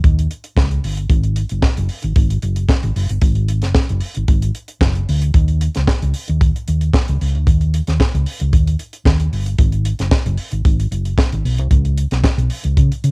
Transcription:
0.04 D#2, kick, closed hi-hat
0.19 closed hi-hat
0.31 closed hi-hat
0.44 closed hi-hat
0.56 C#2, kick, snare
0.71 closed hi-hat
0.84 G1, open hi-hat
0.97 closed hi-hat
1.10 G#1, kick, closed hi-hat
1.24 closed hi-hat
1.36 closed hi-hat
1.49 F#1, closed hi-hat
1.63 kick, snare
1.77 F#1, closed hi-hat
1.89 open hi-hat
2.03 G#1, closed hi-hat
2.16 G#1, kick, closed hi-hat
2.30 closed hi-hat
2.42 F#1, closed hi-hat
2.56 closed hi-hat
2.69 kick, snare
2.83 G#1, closed hi-hat
2.96 F#1, open hi-hat
3.09 G1, closed hi-hat
3.22 G#1, kick, closed hi-hat
3.35 closed hi-hat
3.49 closed hi-hat
3.62 F#1, snare, closed hi-hat
3.75 kick, snare
3.89 F#1, closed hi-hat
4.01 open hi-hat
4.15 G#1, closed hi-hat
4.28 G#1, kick, closed hi-hat
4.42 closed hi-hat
4.55 closed hi-hat
4.68 closed hi-hat
4.81 F#1, kick, snare
4.95 closed hi-hat
5.09 D2, open hi-hat
5.22 closed hi-hat
5.34 D#2, kick, closed hi-hat
5.48 closed hi-hat
5.61 closed hi-hat
5.75 C#2, snare, closed hi-hat
5.87 kick, snare
6.02 C#2, closed hi-hat
6.14 open hi-hat
6.28 D#2, closed hi-hat
6.41 kick, closed hi-hat
6.56 closed hi-hat
6.68 D#2, closed hi-hat
6.81 closed hi-hat
6.93 kick, snare
7.08 C#2, closed hi-hat
7.21 C#2, open hi-hat
7.35 D2, closed hi-hat
7.47 D#2, kick, closed hi-hat
7.61 closed hi-hat
7.74 closed hi-hat
7.87 D#2, snare, closed hi-hat
8.00 kick, snare
8.15 C#2, closed hi-hat
8.26 open hi-hat
8.40 C#2, closed hi-hat
8.53 D#2, kick, closed hi-hat
8.68 closed hi-hat
8.79 closed hi-hat
8.93 closed hi-hat
9.06 D#2, kick, snare
9.20 closed hi-hat
9.33 G1, open hi-hat
9.46 closed hi-hat
9.58 G#1, kick, closed hi-hat
9.72 closed hi-hat
9.85 closed hi-hat
9.99 F#1, snare, closed hi-hat
10.11 kick, snare
10.26 F#1, closed hi-hat
10.38 open hi-hat
10.52 G#1, closed hi-hat
10.65 G#1, kick, closed hi-hat
10.80 closed hi-hat
10.91 F#1, closed hi-hat
11.05 closed hi-hat
11.18 kick, snare
11.32 G#1, closed hi-hat
11.45 B1, open hi-hat
11.58 C2, closed hi-hat
11.71 C#2, kick, closed hi-hat
11.85 closed hi-hat
11.97 closed hi-hat
12.11 B1, snare, closed hi-hat
12.24 kick, snare
12.38 B1, closed hi-hat
12.50 open hi-hat
12.64 C#2, closed hi-hat
12.77 C#3, kick, closed hi-hat
12.92 closed hi-hat
13.04 C#3, closed hi-hat

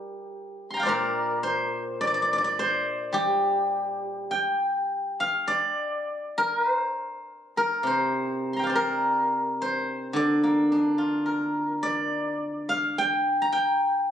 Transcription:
Already playing: G3 G4 A#4 C5
0.70 A#5 C6
0.76 F5 G5
0.83 A#2 C5 D5
0.89 A#4
1.43 C5
2.01 D5
2.07 D5
2.14 D5
2.22 D5
2.33 D5
2.38 D5
2.44 D5
2.59 C5
3.13 G3 G4
4.31 G5
5.20 F5
5.48 D5
6.38 A#4
6.59 B4
6.72 C5
7.57 A#4
7.83 C3 C5
8.53 A#5 C6
8.59 G5
8.64 D5 F5
8.69 C5
8.75 A#4
9.62 C5
10.13 D3 D5
10.43 A#3
10.72 D4 D#5
10.89 D5
10.98 F4
11.05 D#5
11.21 D5
11.26 A#4
11.83 D5
12.69 F5
12.98 G5
13.42 A#5
13.52 G5

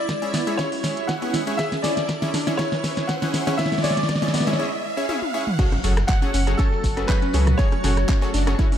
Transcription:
Already playing: E4 D5 E5 E6, riser
0.09 G#3, kick, snare, closed hi-hat, shekere
0.22 G#3 C#4 E4 G#4 C#5 E5, closed hi-hat, shekere
0.34 F#1 B3, snare, open hi-hat, shekere
0.47 G#3 C#4 E4 G#4 C#5 E5, closed hi-hat, shekere
0.57 C#4 E4 G#4 C#5 E5, kick, snare, closed hi-hat, shekere
0.72 G#3, open hi-hat, shekere
0.84 G#3 C#4 E4 G#4 C#5 E5, kick, snare, open hi-hat, shekere
0.97 closed hi-hat, shekere
1.07 G#3 F#5, kick, snare, closed hi-hat, shekere
1.22 B3 C#4 E4 G#4 C#5 F#5, closed hi-hat, shekere
1.34 G#3, snare, open hi-hat, shekere
1.47 G#3 C#4 E4 G#4 C#5 E5, closed hi-hat, shekere
1.57 C#4 E4 G#4 C#5 E5, kick, snare, closed hi-hat, shekere
1.72 C#4, snare, closed hi-hat, shekere
1.82 C#4 E4 G#4 C#5 D5 G#5, snare, open hi-hat, shekere
1.97 snare, closed hi-hat, shekere
2.08 C#4, kick, snare, closed hi-hat, shekere
2.22 C#4 E4 G#4 C#5 E5, snare, closed hi-hat, shekere
2.34 D4, snare, open hi-hat, shekere
2.47 C#4 E4 G#4 C#5 E5, snare, closed hi-hat, shekere
2.57 C#4 E4 G#4 C#5 E5, kick, snare, closed hi-hat, shekere
2.72 C#4, snare, shekere
2.84 C#4 E4 G#4 C#5 E5, kick, snare, open hi-hat, shekere
2.97 snare, closed hi-hat, shekere
3.07 C#4 F#5, kick, snare, closed hi-hat, shekere
3.22 C#4 E4 G#4 C#5 F#5, snare, closed hi-hat, shekere
3.34 C#4, snare, open hi-hat, shekere
3.47 C#4 E4 G#4 C#5 E5, snare, closed hi-hat, shekere
3.57 C#4 E4 G#4 C#5 E5, kick, snare, closed hi-hat, shekere
3.66 snare
3.72 G#3, snare, closed hi-hat, shekere
3.78 snare
3.82 G#3 C#4 E4 G#4 C#5 D5 G#5, snare, open hi-hat, shekere
3.91 snare
3.97 snare, closed hi-hat, shekere
4.03 snare
4.09 G#3, kick, snare, closed hi-hat, shekere
4.16 snare
4.22 G#3 C#4 E4 G#4 C#5 E5, snare, closed hi-hat, shekere
4.28 snare
4.34 B3, snare, open hi-hat, shekere
4.41 snare
4.47 G#3 C#4 E4 G#4 C#5 E5, snare, closed hi-hat, shekere
4.53 snare
4.59 C#4 E4 G#4 C#5 E5
4.97 C#4 E4 G#4 C#5 E5
5.09 C#4 E4 G#4 C#5 E5, high tom
5.22 high tom
5.34 C#4 E4 G#4 C#5 E5
5.47 mid tom
5.59 F#3 A3 C#4 F#4 G#4 A4 C#5, kick, closed hi-hat, crash, impact, shekere
5.72 F#3, cross-stick, closed hi-hat, high conga, shekere
5.84 F#1 F#3 C#4 F#4 G#4 A4 F#5, open hi-hat, shekere
5.97 cross-stick, closed hi-hat, shekere
6.07 F#3 F#5, kick, clap, closed hi-hat, shekere
6.22 F#3 C#4 F#4 G#4 A4 C#5, closed hi-hat, high conga, shekere
6.34 F#1 C#4, open hi-hat, shekere
6.47 F#3 C#4 F#4 G#4 A4 C#5, cross-stick, closed hi-hat, shekere
6.57 C#4 F#4 G#4 A4 C#5, kick, closed hi-hat, high conga, shekere
6.72 F#3, shekere
6.84 F#1 F#3, kick, open hi-hat, shekere
6.97 C#4 F#4 G#4 A4 B4, cross-stick, closed hi-hat, high conga, shekere
7.07 F#3 C#4 F#4 G#4 A4 B4 C#5, kick, clap, closed hi-hat, shekere
7.22 C#4, closed hi-hat, shekere
7.34 C#2 F#3 C#4 F#4 G#4 A4 C#5, open hi-hat, high conga, shekere
7.47 F#3, cross-stick, closed hi-hat, mid tom, shekere
7.57 C#4 F#4 G#4 A4 C#5, kick, closed hi-hat, shekere
7.72 C#4, cross-stick, closed hi-hat, high conga, shekere
7.84 F#1 C#4 F#4 G#4 A4 F#5, cross-stick, mid tom, open hi-hat, shekere
7.97 cross-stick, closed hi-hat, shekere
8.09 C#4, kick, clap, closed hi-hat, shekere
8.21 C#4 F#4 G#4 A4 C#5, clap, closed hi-hat, high conga, shekere
8.34 F#1 D4, open hi-hat, shekere
8.47 C#4 F#4 G#4 A4 C#5, cross-stick, closed hi-hat, shekere
8.59 C#4 E4 F#4 G#4 A4 C#5, kick, closed hi-hat, high conga, shekere
8.72 C#4, open hi-hat, shekere

